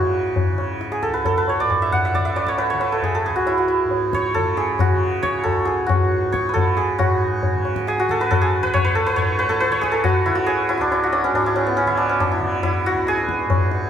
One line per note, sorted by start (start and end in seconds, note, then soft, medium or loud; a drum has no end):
0.00 1.07 C#2 medium
0.00 1.62 G#2 medium
0.00 0.52 C#3 medium
0.00 0.44 B3 medium
0.00 0.71 D4 medium
0.00 2.05 E4 medium
0.00 3.15 F#4 medium
0.00 0.91 G#4 loud
0.36 tabla tin medium
0.36 tabla ge medium
0.52 2.17 C#3 medium
0.58 tabla na medium
0.81 tabla te medium
0.92 1.09 G#4 medium
0.92 tabla te medium
1.03 1.25 A4 medium
1.03 tabla ke medium
1.07 3.27 C#2 medium
1.14 1.37 B4 medium
1.14 tabla te medium
1.25 2.92 A4 medium
1.25 tabla tin medium
1.25 tabla ge medium
1.38 2.58 B4 medium
1.48 1.66 C#5 medium
1.48 tabla na medium
1.60 3.84 G#2 medium
1.60 2.14 D5 medium
1.70 tabla na medium
1.70 tabla ge medium
1.82 2.04 E5 medium
1.92 4.07 F#5 loud
1.92 tabla ge medium
2.05 2.25 E5 medium
2.14 2.73 C#3 medium
2.14 2.36 D5 medium
2.14 tabla tin medium
2.14 tabla ge medium
2.25 4.54 E5 medium
2.36 2.54 D5 medium
2.36 tabla na medium
2.47 2.70 C#5 medium
2.47 tabla ke medium
2.58 2.80 B4 medium
2.58 tabla na medium
2.70 4.37 C#3 medium
2.70 4.14 C#5 medium
2.80 5.52 B4 medium
2.80 tabla na medium
2.92 3.10 A4 medium
3.02 3.21 G#4 medium
3.02 tabla tin medium
3.02 tabla ge medium
3.15 3.32 A4 medium
3.26 5.46 C#2 medium
3.26 4.40 G#4 medium
3.36 3.57 F#4 medium
3.46 3.68 E4 medium
3.46 tabla tin medium
3.58 4.80 F#4 medium
3.68 7.14 E4 medium
3.84 6.01 G#2 medium
3.91 tabla tin medium
4.13 5.22 C#5 loud
4.13 tabla ke medium
4.34 4.91 C#3 medium
4.34 4.63 A4 loud
4.34 tabla tin medium
4.34 tabla ge medium
4.57 5.50 G#4 medium
4.57 tabla te medium
4.79 5.86 F#4 medium
4.79 tabla na medium
4.79 tabla ge medium
4.91 6.55 C#3 medium
5.23 6.32 C#5 loud
5.23 tabla ke medium
5.44 8.61 C#2 medium
5.44 5.71 A4 medium
5.44 tabla tin medium
5.44 tabla ge medium
5.65 6.60 G#4 medium
5.65 tabla te medium
5.86 6.98 F#4 medium
5.86 tabla na medium
5.86 tabla ge medium
6.01 6.99 G#2 medium
6.32 8.73 C#5 medium
6.32 tabla ke medium
6.49 8.21 B4 medium
6.54 7.53 C#3 medium
6.54 6.83 A4 medium
6.54 tabla tin medium
6.54 tabla ge medium
6.77 7.88 G#4 medium
6.77 tabla te medium
6.99 9.16 G#2 medium
6.99 7.99 F#4 medium
6.99 tabla na loud
6.99 tabla ge loud
7.43 tabla tin medium
7.43 tabla ge medium
7.53 8.08 C#3 medium
7.65 tabla na medium
7.76 tabla ke medium
7.87 8.17 G#4 loud
7.87 tabla te medium
7.98 10.03 F#4 medium
7.98 tabla te medium
8.08 9.69 C#3 medium
8.08 8.30 A4 loud
8.08 tabla ke medium
8.20 8.62 B4 loud
8.20 tabla te medium
8.31 8.47 A4 loud
8.31 tabla tin medium
8.31 tabla ge medium
8.41 9.01 G#4 loud
8.62 10.78 C#2 medium
8.62 8.84 B4 loud
8.74 9.16 C#5 loud
8.74 tabla na medium
8.74 tabla ge medium
8.85 9.06 B4 loud
8.95 9.49 A4 loud
9.06 9.38 B4 loud
9.16 11.32 G#2 medium
9.16 9.71 C#5 loud
9.16 tabla tin medium
9.16 tabla ge medium
9.39 9.60 B4 loud
9.39 tabla na medium
9.49 9.87 A4 medium
9.49 tabla ke medium
9.60 12.32 B4 loud
9.60 tabla te medium
9.70 10.25 C#3 medium
9.70 10.87 C#5 loud
9.70 tabla te medium
9.81 9.98 G#4 medium
9.81 tabla ke medium
9.92 10.52 A4 medium
9.92 tabla te medium
10.04 10.35 F#4 loud
10.04 tabla tin medium
10.04 tabla ge medium
10.25 11.86 C#3 medium
10.25 10.68 E4 medium
10.35 11.03 F#4 medium
10.46 13.08 G#4 loud
10.46 tabla tin medium
10.69 10.77 E4 medium
10.69 tabla na medium
10.77 12.92 C#2 medium
10.77 11.12 D4 medium
10.77 10.91 E4 medium
10.92 11.46 E4 medium
10.92 tabla tin medium
11.04 12.86 F#4 medium
11.12 11.30 D4 loud
11.12 tabla na medium
11.24 11.41 C#4 medium
11.33 13.45 G#2 medium
11.33 11.62 D4 medium
11.33 tabla tin medium
11.46 11.87 E4 medium
11.56 11.76 C#4 medium
11.56 tabla na medium
11.67 13.90 B3 medium
11.77 12.03 C#4 medium
11.77 tabla te medium
11.86 12.39 C#3 medium
11.86 12.31 E4 medium
11.97 12.15 D4 medium
11.97 tabla te medium
12.09 12.26 C#4 medium
12.20 13.90 D4 medium
12.20 tabla na medium
12.20 tabla ge medium
12.32 12.63 E4 medium
12.39 13.90 C#3 medium
12.39 tabla ge medium
12.63 13.90 E4 loud
12.63 tabla tin medium
12.63 tabla ge medium
12.86 13.90 F#4 loud
12.93 13.90 C#2 medium
13.07 13.90 G#4 loud
13.07 tabla te medium
13.17 tabla te medium
13.29 tabla ke medium
13.39 tabla te medium
13.46 13.90 G#2 medium
13.50 tabla na medium
13.50 tabla ge medium
13.72 tabla te medium